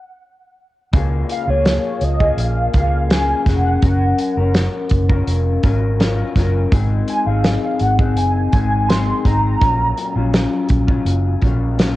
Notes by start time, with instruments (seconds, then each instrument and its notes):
Already playing: soft synth lead F#5
0.93 fingered electric bass C#2, clean electric guitar C#3 A#3 F4 G#4, kick, closed hi-hat
1.29 soft synth lead F5, closed hi-hat
1.47 fingered electric bass C#2, clean electric guitar A#3 F4 G#4, soft synth lead C#5
1.65 snare, closed hi-hat
2.01 fingered electric bass C#2, soft synth lead D#5, closed hi-hat
2.20 clean electric guitar A#3 F4 G#4, kick
2.37 fingered electric bass A#1, soft synth lead F5, closed hi-hat
2.74 fingered electric bass C#2, clean electric guitar C#3 A#3 F4 G#4, soft synth lead F5, kick, closed hi-hat
3.10 clean electric guitar C#3 A#3 F4 G#4, soft synth lead G#5, snare, closed hi-hat
3.46 fingered electric bass F1, clean electric guitar C#3 A#3 G#4, soft synth lead F#5, kick, snare, closed hi-hat
3.82 fingered electric bass F#1, clean electric guitar F#3 C#4 A#4, kick, closed hi-hat
4.18 closed hi-hat
4.37 fingered electric bass F#1, clean electric guitar C#4 A#4
4.54 snare, closed hi-hat
4.89 fingered electric bass F#1, kick, closed hi-hat
5.09 clean electric guitar C#4 F4 A#4, kick
5.27 fingered electric bass F1, closed hi-hat
5.63 fingered electric bass G#1, clean electric guitar F#3 C#4 F4 A#4, kick, closed hi-hat
5.99 clean electric guitar F#3 C#4 F4 A#4, snare, closed hi-hat
6.35 fingered electric bass F#1, clean electric guitar F#3 C#4 F4 A#4, kick, snare, closed hi-hat
6.72 fingered electric bass G#1, clean electric guitar G#3 C4 D#4 G#4, kick, closed hi-hat
7.08 soft synth lead G#5, closed hi-hat
7.26 fingered electric bass G#1, clean electric guitar C4 D#4 G#4, soft synth lead F5
7.44 snare, closed hi-hat
7.79 fingered electric bass G#1, soft synth lead F#5, closed hi-hat
7.99 clean electric guitar C4 D#4 G#4, kick
8.17 fingered electric bass F#1, soft synth lead G#5, closed hi-hat
8.53 fingered electric bass G#1, clean electric guitar G#3 C4 D#4 G#4, soft synth lead G#5, kick, closed hi-hat
8.89 clean electric guitar G#3 C4 D#4 G#4, soft synth lead C6, snare, closed hi-hat
9.24 fingered electric bass G#1, clean electric guitar G#3 C4 D#4 G#4, soft synth lead A#5, kick, closed hi-hat
9.61 fingered electric bass A#1, clean electric guitar A#2 F#3 C#4 F4, kick, closed hi-hat
9.97 closed hi-hat
10.15 fingered electric bass A#1, clean electric guitar F#3 C#4 F4
10.34 snare, closed hi-hat
10.69 fingered electric bass A#1, kick, closed hi-hat
10.87 clean electric guitar F#3 C#4 F4, kick
11.05 fingered electric bass F#1, closed hi-hat
11.41 fingered electric bass A#1, clean electric guitar A#2 F#3 C#4 F4, kick, closed hi-hat
11.77 clean electric guitar A#2 F#3 C#4 F4, snare, closed hi-hat